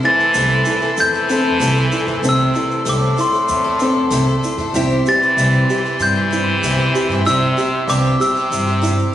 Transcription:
Already playing: grand piano C2 C3 A3 C4 E4 C5 E5, string section A4 C5 E5 C6
0.03 twelve-string acoustic guitar E3 A3 E4 A4, french horn E3, upright piano E4, glockenspiel A6
0.20 shaker
0.33 upright bass C2, twelve-string acoustic guitar C3 E3 A3 E4 A4, grand piano A3 C4 E4 C5 E5, shaker
0.50 shaker
0.65 twelve-string acoustic guitar E3 A3 E4, upright piano E4, shaker
0.70 twelve-string acoustic guitar A4
0.82 twelve-string acoustic guitar A3 E4 A4, shaker
0.97 upright bass E2, french horn E3, grand piano A3 C4 E4 C5 E5, glockenspiel G6, shaker
1.14 twelve-string acoustic guitar A3 E4 A4, shaker
1.29 twelve-string acoustic guitar E3 A3 E4 A4, upright piano C4, shaker
1.60 upright bass C2, twelve-string acoustic guitar C3 E3 A3 E4 A4, grand piano A3 C4 E4 C5 E5, shaker
1.76 twelve-string acoustic guitar A3 E4 A4, shaker
1.92 upright piano E4, shaker
2.07 upright bass E2, twelve-string acoustic guitar E4 A4, shaker
2.11 twelve-string acoustic guitar A3
2.22 upright bass C2, grand piano C2 C3 A3 C4 E4 C5 E5, twelve-string acoustic guitar C3 E3 A3 E4 A4, french horn C3, upright piano C4, string section D5, shaker
2.29 glockenspiel E6
2.40 shaker
2.54 twelve-string acoustic guitar E3 A3 E4 A4, upright piano E4, shaker
2.71 shaker
2.85 upright bass C2, twelve-string acoustic guitar C3 E3 A3 E4 A4, grand piano A3 C4 E4 C5 E5, shaker
2.89 french horn A2, glockenspiel D6
3.02 shaker
3.16 twelve-string acoustic guitar E3 A3 E4 A4, upright piano E4, shaker
3.20 french horn A2, glockenspiel C6
3.33 twelve-string acoustic guitar A3 E4 A4, shaker
3.48 upright bass E2, grand piano A3 C4 E4 C5 E5, shaker
3.64 twelve-string acoustic guitar A3 E4 A4
3.80 twelve-string acoustic guitar E3 A3 E4 A4, upright piano C4, shaker
4.10 upright bass C2, twelve-string acoustic guitar C3 E3 A3 E4 A4, grand piano A3 C4 E4 C5 E5, shaker
4.28 twelve-string acoustic guitar A3 E4 A4, shaker
4.43 upright piano E4, shaker
4.58 upright bass E2, twelve-string acoustic guitar A3 E4 A4, shaker
4.73 upright bass C2, grand piano C2 C3 G3 C4 E4 C5 E5, twelve-string acoustic guitar C3 G3 C4 E4 G4, upright piano E4, string section G4 C5 E5 C6, shaker
4.90 shaker
5.06 french horn E3, twelve-string acoustic guitar G3 C4 E4 G4, upright piano G4, glockenspiel A6, shaker
5.22 shaker
5.36 upright bass C2, twelve-string acoustic guitar C3 G3 C4, grand piano G3 C4 E4 C5 E5, shaker
5.40 twelve-string acoustic guitar E4 G4
5.54 shaker
5.70 twelve-string acoustic guitar G3 C4 E4 G4, upright piano G4, shaker
5.85 twelve-string acoustic guitar C4 E4 G4, shaker
5.99 upright bass G2, french horn E3, grand piano G3 C4 E4 C5 D5, glockenspiel G6, shaker
6.15 twelve-string acoustic guitar C4 E4 G4
6.31 twelve-string acoustic guitar G3 C4 E4 G4, upright piano E4, shaker
6.62 upright bass C2, twelve-string acoustic guitar C3 G3 C4 E4 G4, grand piano G3 C4 E4 C5 E5, shaker
6.78 twelve-string acoustic guitar C4 E4 G4, shaker
6.95 upright piano G4, shaker
7.09 upright bass G2, twelve-string acoustic guitar E4 G4, shaker
7.14 twelve-string acoustic guitar C4
7.25 upright bass C2, grand piano C2 C3 G3 C4 E4 C5 E5, twelve-string acoustic guitar C3 G3 C4 E4 G4, french horn C3, upright piano E4, glockenspiel E6, shaker
7.57 twelve-string acoustic guitar G3 C4 E4 G4, upright piano G4, shaker
7.86 upright bass C2, french horn G2, twelve-string acoustic guitar C3 G3 C4 E4 G4, grand piano G3 C4 E4 C5 E5, glockenspiel D6, shaker
8.06 shaker
8.20 french horn C3, twelve-string acoustic guitar G3 C4 E4 G4, upright piano G4, glockenspiel E6, shaker
8.36 twelve-string acoustic guitar C4 E4 G4, shaker
8.50 upright bass G2, grand piano G3 C4 E4 C5 E5, shaker
8.67 twelve-string acoustic guitar C4 E4 G4, shaker
8.82 twelve-string acoustic guitar G3 C4 E4 G4, upright piano E4, shaker
8.99 shaker

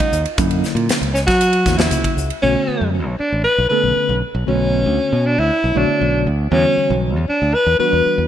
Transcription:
Already playing: tine electric piano G#3 C#4 D#4, alto saxophone D#4
0.00 kick, ride
0.12 fingered electric bass D#2, hi-hat pedal
0.26 ride
0.38 fingered electric bass F#2, tine electric piano D3 F#3 A#3 C#4 E4, kick, hi-hat pedal, ride
0.51 ride
0.64 snare, hi-hat pedal
0.75 fingered electric bass A#2, ride
0.89 muted fingered electric bass stroke, snare, hi-hat pedal, ride
1.01 fingered electric bass C#2, ride
1.14 alto saxophone C#4, snare, hi-hat pedal
1.27 fingered electric bass F#3, alto saxophone F#4, kick, snare, ride
1.41 hi-hat pedal, ride
1.53 ride
1.66 fingered electric bass E2, tine electric piano D3 F#3 A#3 C#4 E4, kick, snare, hi-hat pedal
1.77 alto saxophone E4, snare, ride
1.90 fingered electric bass C#2, hi-hat pedal, ride
2.04 kick, ride
2.17 fingered electric bass C#2, hi-hat pedal
2.30 ride
2.42 fingered electric bass B1, tine electric piano D3 A3 B3 C#4 F#4, alto saxophone C#4
2.68 muted fingered electric bass stroke
2.81 fingered electric bass F#2
3.06 fingered electric bass B1
3.19 alto saxophone D4, muted fingered electric bass stroke
3.32 fingered electric bass A1
3.44 alto saxophone B4
3.58 fingered electric bass B1
3.69 tine electric piano D3 A3 B3 C#4 A4, alto saxophone B4
3.84 fingered electric bass B1
3.96 muted fingered electric bass stroke
4.09 fingered electric bass B1
4.35 fingered electric bass B1
4.46 fingered electric bass B1, tine electric piano D3 A3 B3 C#4 F#4, alto saxophone C#4
4.86 fingered electric bass D2
5.13 fingered electric bass B2
5.26 alto saxophone D4
5.38 fingered electric bass D2, alto saxophone E4
5.64 fingered electric bass B1
5.75 fingered electric bass B1, tine electric piano D3 A3 B3 F#4 C#5, alto saxophone D4
6.01 fingered electric bass B1
6.27 fingered electric bass D2
6.51 fingered electric bass E2, tine electric piano D3 E3 G3 B3 F#4, alto saxophone C#4
6.77 muted fingered electric bass stroke
6.90 fingered electric bass B1
7.16 fingered electric bass E2
7.29 alto saxophone D4, muted fingered electric bass stroke
7.42 fingered electric bass D2
7.54 alto saxophone B4
7.66 fingered electric bass E2
7.78 tine electric piano E3 G3 B3 D4 F#4, alto saxophone B4, muted fingered electric bass stroke
7.93 fingered electric bass E2
8.06 muted fingered electric bass stroke
8.18 fingered electric bass E2

